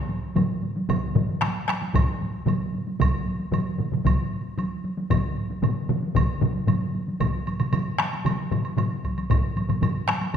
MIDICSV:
0, 0, Header, 1, 3, 480
1, 0, Start_track
1, 0, Tempo, 525855
1, 817, Time_signature, 4, 2, 24, 8
1, 9463, End_track
2, 0, Start_track
2, 0, Title_t, "Taiko and cinematic ensemble drums"
2, 85, Note_on_c, 9, 48, 50
2, 176, Note_off_c, 9, 48, 0
2, 328, Note_on_c, 9, 47, 84
2, 329, Note_on_c, 9, 48, 70
2, 332, Note_on_c, 9, 45, 87
2, 419, Note_off_c, 9, 47, 0
2, 421, Note_off_c, 9, 48, 0
2, 423, Note_off_c, 9, 45, 0
2, 572, Note_on_c, 9, 48, 49
2, 664, Note_off_c, 9, 48, 0
2, 693, Note_on_c, 9, 48, 54
2, 784, Note_off_c, 9, 48, 0
2, 811, Note_on_c, 9, 41, 92
2, 812, Note_on_c, 9, 48, 69
2, 814, Note_on_c, 9, 45, 84
2, 818, Note_on_c, 9, 47, 84
2, 903, Note_off_c, 9, 41, 0
2, 903, Note_off_c, 9, 48, 0
2, 906, Note_off_c, 9, 45, 0
2, 910, Note_off_c, 9, 47, 0
2, 1052, Note_on_c, 9, 47, 80
2, 1053, Note_on_c, 9, 48, 52
2, 1057, Note_on_c, 9, 45, 88
2, 1143, Note_off_c, 9, 47, 0
2, 1144, Note_off_c, 9, 48, 0
2, 1148, Note_off_c, 9, 45, 0
2, 1174, Note_on_c, 9, 48, 52
2, 1265, Note_off_c, 9, 48, 0
2, 1292, Note_on_c, 9, 37, 61
2, 1296, Note_on_c, 9, 48, 62
2, 1297, Note_off_c, 9, 37, 0
2, 1297, Note_on_c, 9, 37, 60
2, 1387, Note_off_c, 9, 48, 0
2, 1388, Note_off_c, 9, 37, 0
2, 1534, Note_on_c, 9, 37, 62
2, 1537, Note_on_c, 9, 48, 50
2, 1539, Note_off_c, 9, 37, 0
2, 1539, Note_on_c, 9, 37, 61
2, 1628, Note_off_c, 9, 48, 0
2, 1630, Note_off_c, 9, 37, 0
2, 1657, Note_on_c, 9, 48, 50
2, 1749, Note_off_c, 9, 48, 0
2, 1774, Note_on_c, 9, 45, 83
2, 1774, Note_on_c, 9, 47, 86
2, 1776, Note_on_c, 9, 41, 103
2, 1779, Note_on_c, 9, 48, 60
2, 1865, Note_off_c, 9, 45, 0
2, 1865, Note_off_c, 9, 47, 0
2, 1867, Note_off_c, 9, 41, 0
2, 1871, Note_off_c, 9, 48, 0
2, 2019, Note_on_c, 9, 48, 47
2, 2110, Note_off_c, 9, 48, 0
2, 2253, Note_on_c, 9, 47, 88
2, 2257, Note_on_c, 9, 45, 88
2, 2259, Note_on_c, 9, 48, 65
2, 2344, Note_off_c, 9, 47, 0
2, 2348, Note_off_c, 9, 45, 0
2, 2351, Note_off_c, 9, 48, 0
2, 2502, Note_on_c, 9, 48, 41
2, 2593, Note_off_c, 9, 48, 0
2, 2621, Note_on_c, 9, 48, 48
2, 2712, Note_off_c, 9, 48, 0
2, 2736, Note_on_c, 9, 45, 86
2, 2737, Note_on_c, 9, 47, 83
2, 2739, Note_on_c, 9, 41, 95
2, 2742, Note_on_c, 9, 48, 58
2, 2827, Note_off_c, 9, 45, 0
2, 2828, Note_off_c, 9, 47, 0
2, 2831, Note_off_c, 9, 41, 0
2, 2833, Note_off_c, 9, 48, 0
2, 2984, Note_on_c, 9, 48, 47
2, 3075, Note_off_c, 9, 48, 0
2, 3100, Note_on_c, 9, 48, 48
2, 3192, Note_off_c, 9, 48, 0
2, 3214, Note_on_c, 9, 45, 87
2, 3224, Note_on_c, 9, 47, 74
2, 3225, Note_on_c, 9, 48, 52
2, 3305, Note_off_c, 9, 45, 0
2, 3315, Note_off_c, 9, 47, 0
2, 3316, Note_off_c, 9, 48, 0
2, 3453, Note_on_c, 9, 45, 64
2, 3465, Note_on_c, 9, 48, 51
2, 3470, Note_on_c, 9, 47, 61
2, 3544, Note_off_c, 9, 45, 0
2, 3556, Note_off_c, 9, 48, 0
2, 3562, Note_off_c, 9, 47, 0
2, 3576, Note_on_c, 9, 45, 64
2, 3585, Note_on_c, 9, 48, 46
2, 3591, Note_on_c, 9, 47, 67
2, 3667, Note_off_c, 9, 45, 0
2, 3676, Note_off_c, 9, 48, 0
2, 3682, Note_off_c, 9, 47, 0
2, 3692, Note_on_c, 9, 45, 86
2, 3697, Note_on_c, 9, 48, 61
2, 3702, Note_on_c, 9, 47, 84
2, 3703, Note_on_c, 9, 41, 88
2, 3784, Note_off_c, 9, 45, 0
2, 3788, Note_off_c, 9, 48, 0
2, 3794, Note_off_c, 9, 47, 0
2, 3795, Note_off_c, 9, 41, 0
2, 4179, Note_on_c, 9, 48, 76
2, 4270, Note_off_c, 9, 48, 0
2, 4421, Note_on_c, 9, 48, 50
2, 4512, Note_off_c, 9, 48, 0
2, 4540, Note_on_c, 9, 48, 56
2, 4632, Note_off_c, 9, 48, 0
2, 4658, Note_on_c, 9, 45, 92
2, 4658, Note_on_c, 9, 47, 87
2, 4659, Note_on_c, 9, 48, 77
2, 4662, Note_on_c, 9, 41, 88
2, 4749, Note_off_c, 9, 45, 0
2, 4749, Note_off_c, 9, 47, 0
2, 4751, Note_off_c, 9, 48, 0
2, 4753, Note_off_c, 9, 41, 0
2, 5021, Note_on_c, 9, 48, 51
2, 5113, Note_off_c, 9, 48, 0
2, 5138, Note_on_c, 9, 45, 84
2, 5138, Note_on_c, 9, 47, 83
2, 5142, Note_on_c, 9, 48, 62
2, 5229, Note_off_c, 9, 45, 0
2, 5229, Note_off_c, 9, 47, 0
2, 5234, Note_off_c, 9, 48, 0
2, 5377, Note_on_c, 9, 45, 84
2, 5377, Note_on_c, 9, 47, 84
2, 5384, Note_on_c, 9, 48, 52
2, 5468, Note_off_c, 9, 45, 0
2, 5469, Note_off_c, 9, 47, 0
2, 5475, Note_off_c, 9, 48, 0
2, 5500, Note_on_c, 9, 48, 46
2, 5591, Note_off_c, 9, 48, 0
2, 5612, Note_on_c, 9, 45, 93
2, 5621, Note_on_c, 9, 41, 91
2, 5621, Note_on_c, 9, 47, 85
2, 5622, Note_on_c, 9, 48, 62
2, 5703, Note_off_c, 9, 45, 0
2, 5712, Note_off_c, 9, 41, 0
2, 5712, Note_off_c, 9, 47, 0
2, 5713, Note_off_c, 9, 48, 0
2, 5854, Note_on_c, 9, 45, 86
2, 5861, Note_on_c, 9, 47, 91
2, 5863, Note_on_c, 9, 48, 48
2, 5945, Note_off_c, 9, 45, 0
2, 5952, Note_off_c, 9, 47, 0
2, 5954, Note_off_c, 9, 48, 0
2, 5982, Note_on_c, 9, 48, 42
2, 6073, Note_off_c, 9, 48, 0
2, 6092, Note_on_c, 9, 45, 88
2, 6097, Note_on_c, 9, 47, 84
2, 6101, Note_on_c, 9, 48, 62
2, 6183, Note_off_c, 9, 45, 0
2, 6189, Note_off_c, 9, 47, 0
2, 6193, Note_off_c, 9, 48, 0
2, 6341, Note_on_c, 9, 48, 41
2, 6432, Note_off_c, 9, 48, 0
2, 6460, Note_on_c, 9, 48, 48
2, 6551, Note_off_c, 9, 48, 0
2, 6573, Note_on_c, 9, 45, 79
2, 6576, Note_on_c, 9, 47, 80
2, 6577, Note_on_c, 9, 41, 81
2, 6582, Note_on_c, 9, 48, 55
2, 6665, Note_off_c, 9, 45, 0
2, 6667, Note_off_c, 9, 47, 0
2, 6669, Note_off_c, 9, 41, 0
2, 6673, Note_off_c, 9, 48, 0
2, 6823, Note_on_c, 9, 48, 48
2, 6914, Note_off_c, 9, 48, 0
2, 6933, Note_on_c, 9, 45, 56
2, 6936, Note_on_c, 9, 47, 64
2, 6942, Note_on_c, 9, 48, 45
2, 7025, Note_off_c, 9, 45, 0
2, 7027, Note_off_c, 9, 47, 0
2, 7034, Note_off_c, 9, 48, 0
2, 7051, Note_on_c, 9, 45, 80
2, 7051, Note_on_c, 9, 47, 74
2, 7064, Note_on_c, 9, 48, 50
2, 7142, Note_off_c, 9, 47, 0
2, 7143, Note_off_c, 9, 45, 0
2, 7155, Note_off_c, 9, 48, 0
2, 7289, Note_on_c, 9, 37, 66
2, 7293, Note_off_c, 9, 37, 0
2, 7293, Note_on_c, 9, 37, 61
2, 7302, Note_on_c, 9, 48, 49
2, 7384, Note_off_c, 9, 37, 0
2, 7393, Note_off_c, 9, 48, 0
2, 7421, Note_on_c, 9, 48, 44
2, 7512, Note_off_c, 9, 48, 0
2, 7531, Note_on_c, 9, 45, 86
2, 7535, Note_on_c, 9, 47, 86
2, 7543, Note_on_c, 9, 48, 54
2, 7622, Note_off_c, 9, 45, 0
2, 7626, Note_off_c, 9, 47, 0
2, 7635, Note_off_c, 9, 48, 0
2, 7771, Note_on_c, 9, 45, 84
2, 7773, Note_on_c, 9, 47, 78
2, 7779, Note_on_c, 9, 48, 44
2, 7862, Note_off_c, 9, 45, 0
2, 7864, Note_off_c, 9, 47, 0
2, 7870, Note_off_c, 9, 48, 0
2, 8008, Note_on_c, 9, 45, 84
2, 8010, Note_on_c, 9, 47, 82
2, 8015, Note_on_c, 9, 48, 67
2, 8099, Note_off_c, 9, 45, 0
2, 8101, Note_off_c, 9, 47, 0
2, 8106, Note_off_c, 9, 48, 0
2, 8250, Note_on_c, 9, 41, 65
2, 8258, Note_on_c, 9, 48, 49
2, 8341, Note_off_c, 9, 41, 0
2, 8349, Note_off_c, 9, 48, 0
2, 8377, Note_on_c, 9, 48, 48
2, 8468, Note_off_c, 9, 48, 0
2, 8487, Note_on_c, 9, 45, 91
2, 8489, Note_on_c, 9, 41, 88
2, 8490, Note_on_c, 9, 47, 82
2, 8494, Note_on_c, 9, 48, 65
2, 8578, Note_off_c, 9, 45, 0
2, 8580, Note_off_c, 9, 41, 0
2, 8581, Note_off_c, 9, 47, 0
2, 8586, Note_off_c, 9, 48, 0
2, 8733, Note_on_c, 9, 48, 50
2, 8824, Note_off_c, 9, 48, 0
2, 8843, Note_on_c, 9, 47, 66
2, 8849, Note_on_c, 9, 45, 58
2, 8851, Note_on_c, 9, 48, 45
2, 8934, Note_off_c, 9, 47, 0
2, 8940, Note_off_c, 9, 45, 0
2, 8942, Note_off_c, 9, 48, 0
2, 8965, Note_on_c, 9, 47, 80
2, 8968, Note_on_c, 9, 45, 83
2, 8968, Note_on_c, 9, 48, 59
2, 9056, Note_off_c, 9, 47, 0
2, 9059, Note_off_c, 9, 45, 0
2, 9059, Note_off_c, 9, 48, 0
2, 9197, Note_on_c, 9, 37, 68
2, 9204, Note_on_c, 9, 48, 52
2, 9209, Note_off_c, 9, 37, 0
2, 9209, Note_on_c, 9, 37, 64
2, 9296, Note_off_c, 9, 48, 0
2, 9300, Note_off_c, 9, 37, 0
2, 9323, Note_on_c, 9, 48, 47
2, 9414, Note_off_c, 9, 48, 0
2, 9463, End_track
3, 0, Start_track
3, 0, Title_t, "Drums"
3, 333, Note_on_c, 9, 76, 38
3, 425, Note_off_c, 9, 76, 0
3, 819, Note_on_c, 9, 76, 48
3, 910, Note_off_c, 9, 76, 0
3, 1304, Note_on_c, 9, 76, 37
3, 1395, Note_off_c, 9, 76, 0
3, 1785, Note_on_c, 9, 76, 52
3, 1876, Note_off_c, 9, 76, 0
3, 2267, Note_on_c, 9, 76, 42
3, 2359, Note_off_c, 9, 76, 0
3, 2752, Note_on_c, 9, 76, 55
3, 2843, Note_off_c, 9, 76, 0
3, 3228, Note_on_c, 9, 76, 40
3, 3319, Note_off_c, 9, 76, 0
3, 3711, Note_on_c, 9, 76, 53
3, 3803, Note_off_c, 9, 76, 0
3, 4186, Note_on_c, 9, 76, 39
3, 4278, Note_off_c, 9, 76, 0
3, 4663, Note_on_c, 9, 76, 54
3, 4754, Note_off_c, 9, 76, 0
3, 5145, Note_on_c, 9, 76, 40
3, 5236, Note_off_c, 9, 76, 0
3, 5627, Note_on_c, 9, 76, 52
3, 5718, Note_off_c, 9, 76, 0
3, 6099, Note_on_c, 9, 76, 41
3, 6190, Note_off_c, 9, 76, 0
3, 6578, Note_on_c, 9, 76, 51
3, 6669, Note_off_c, 9, 76, 0
3, 6820, Note_on_c, 9, 76, 38
3, 6911, Note_off_c, 9, 76, 0
3, 6934, Note_on_c, 9, 76, 41
3, 7026, Note_off_c, 9, 76, 0
3, 7053, Note_on_c, 9, 76, 44
3, 7144, Note_off_c, 9, 76, 0
3, 7299, Note_on_c, 9, 76, 37
3, 7390, Note_off_c, 9, 76, 0
3, 7415, Note_on_c, 9, 76, 36
3, 7506, Note_off_c, 9, 76, 0
3, 7540, Note_on_c, 9, 76, 47
3, 7632, Note_off_c, 9, 76, 0
3, 7779, Note_on_c, 9, 76, 38
3, 7870, Note_off_c, 9, 76, 0
3, 7895, Note_on_c, 9, 76, 34
3, 7986, Note_off_c, 9, 76, 0
3, 8017, Note_on_c, 9, 76, 45
3, 8108, Note_off_c, 9, 76, 0
3, 8259, Note_on_c, 9, 76, 34
3, 8350, Note_off_c, 9, 76, 0
3, 8378, Note_on_c, 9, 76, 34
3, 8469, Note_off_c, 9, 76, 0
3, 8496, Note_on_c, 9, 76, 48
3, 8588, Note_off_c, 9, 76, 0
3, 8735, Note_on_c, 9, 76, 36
3, 8826, Note_off_c, 9, 76, 0
3, 8851, Note_on_c, 9, 76, 35
3, 8942, Note_off_c, 9, 76, 0
3, 8972, Note_on_c, 9, 76, 43
3, 9063, Note_off_c, 9, 76, 0
3, 9211, Note_on_c, 9, 76, 38
3, 9302, Note_off_c, 9, 76, 0
3, 9324, Note_on_c, 9, 76, 36
3, 9416, Note_off_c, 9, 76, 0
3, 9463, End_track
0, 0, End_of_file